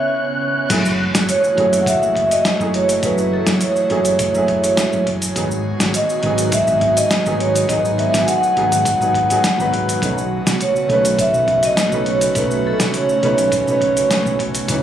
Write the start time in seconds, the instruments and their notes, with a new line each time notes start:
Already playing: analog synth pad C#3 B3 C#4 C#5, grand piano D#3 E3 C#4 B4, synth texture F#6
0.69 fretless electric bass F#1, analog synth pad E3 A3 F#4 G#4, grand piano F#3 A3 E4 G#4, kick, closed hi-hat, crash, cabasa
0.85 cabasa
1.14 fretless electric bass F#1, snare, closed hi-hat, cabasa
1.29 vibraphone C#5, closed hi-hat, cabasa
1.44 cabasa
1.55 fretless electric bass F#1, grand piano F#3 A3 E4, closed hi-hat
1.60 grand piano G#4
1.73 closed hi-hat, cabasa
1.81 vibraphone F#5
1.86 vibraphone E5, kick, closed hi-hat, cabasa
2.02 fretless electric bass F#1, cabasa
2.16 kick, closed hi-hat
2.25 vibraphone E5
2.31 vibraphone D#5, closed hi-hat, cabasa
2.45 snare, closed hi-hat, cabasa
2.59 fretless electric bass F#1, grand piano F#3 A3 E4 G#4, cabasa
2.74 vibraphone C#5, closed hi-hat
2.89 closed hi-hat, cabasa
3.01 fretless electric bass F#1, grand piano F#3 A3 E4, kick, closed hi-hat, cabasa
3.05 grand piano G#4, vibraphone B4
3.18 cabasa
3.34 vibraphone A4
3.47 fretless electric bass F#1, snare, closed hi-hat, cabasa
3.61 vibraphone C#5, closed hi-hat, cabasa
3.76 cabasa
3.90 fretless electric bass F#1, grand piano F#3 A3 E4 G#4, closed hi-hat
4.05 closed hi-hat, cabasa
4.19 kick, closed hi-hat, cabasa
4.33 fretless electric bass F#1, grand piano F#3 A3 E4, cabasa
4.37 grand piano G#4
4.48 kick, closed hi-hat
4.64 closed hi-hat, cabasa
4.77 snare, closed hi-hat, cabasa
4.93 fretless electric bass F#1, cabasa
5.07 kick, closed hi-hat
5.22 closed hi-hat, cabasa
5.35 fretless electric bass G#1, analog synth pad D#3 B3 F#4, grand piano F#3 B3 D#4 G#4, kick, closed hi-hat, cabasa
5.51 cabasa
5.80 fretless electric bass G#1, snare, closed hi-hat, cabasa
5.94 vibraphone D#5, closed hi-hat, cabasa
6.09 cabasa
6.21 fretless electric bass G#1, grand piano D#3 F#3 B3, closed hi-hat
6.26 grand piano G#4
6.38 closed hi-hat, cabasa
6.52 vibraphone E5, kick, closed hi-hat, cabasa
6.67 fretless electric bass G#1, cabasa
6.81 kick, closed hi-hat
6.97 vibraphone D#5, closed hi-hat, cabasa
7.11 snare, closed hi-hat, cabasa
7.25 fretless electric bass G#1, grand piano F#3 B3 D#4 G#4, cabasa
7.40 vibraphone C#5, closed hi-hat
7.56 closed hi-hat, cabasa
7.68 fretless electric bass G#1, grand piano F#3 B3 D#4, vibraphone D#5, kick, closed hi-hat, cabasa
7.72 grand piano G#4
7.85 cabasa
7.98 vibraphone E5, closed hi-hat
8.14 fretless electric bass G#1, snare, closed hi-hat, cabasa
8.22 vibraphone G#5
8.27 vibraphone F#5, closed hi-hat, cabasa
8.43 cabasa
8.56 fretless electric bass G#1, grand piano F#3 B3 D#4 G#4, closed hi-hat
8.72 closed hi-hat, cabasa
8.85 kick, closed hi-hat, cabasa
9.00 fretless electric bass G#1, grand piano F#3 B3 D#4 G#4, cabasa
9.15 kick, closed hi-hat
9.29 grand piano F#3 B3 D#4 G#4, closed hi-hat, cabasa
9.44 snare, closed hi-hat, cabasa
9.58 fretless electric bass G#1, grand piano F#3 B3 D#4 B4, cabasa
9.73 kick, closed hi-hat
9.89 closed hi-hat, cabasa
10.01 fretless electric bass B1, analog synth pad C#3 A3 F#4, grand piano A3 C#4 D#4 B4, kick, closed hi-hat, cabasa
10.18 cabasa
10.47 fretless electric bass B1, snare, closed hi-hat, cabasa
10.61 vibraphone C#5, closed hi-hat, cabasa
10.76 cabasa
10.88 fretless electric bass B1, grand piano D#3 A3 C#4, closed hi-hat
10.92 grand piano B4
11.05 closed hi-hat, cabasa
11.19 vibraphone E5, kick, closed hi-hat, cabasa
11.33 fretless electric bass B1, cabasa
11.48 kick, closed hi-hat
11.63 vibraphone D#5, closed hi-hat, cabasa
11.77 snare, closed hi-hat, cabasa
11.92 fretless electric bass B1, grand piano A3 C#4 D#4 B4, cabasa
12.06 vibraphone C#5, closed hi-hat
12.21 closed hi-hat, cabasa
12.34 fretless electric bass B1, grand piano A3 C#4 D#4, analog synth pad C#4, vibraphone B4, kick, closed hi-hat, cabasa
12.38 grand piano B4
12.51 cabasa
12.67 vibraphone A4
12.80 fretless electric bass B1, snare, closed hi-hat, cabasa
12.94 vibraphone C#5, closed hi-hat, cabasa
13.09 cabasa
13.22 fretless electric bass B1, grand piano A3 C#4 D#4 B4, closed hi-hat
13.38 closed hi-hat, cabasa
13.52 kick, closed hi-hat, cabasa
13.65 fretless electric bass B1, grand piano A3 C#4 D#4, cabasa
13.70 grand piano B4
13.81 kick, closed hi-hat
13.97 closed hi-hat, cabasa
14.11 snare, closed hi-hat, cabasa
14.25 fretless electric bass B1, cabasa
14.39 kick, closed hi-hat
14.55 closed hi-hat, cabasa
14.68 fretless electric bass C#2, grand piano E3 C#4 D#4 B4, analog synth pad G#3 B3, kick, closed hi-hat, cabasa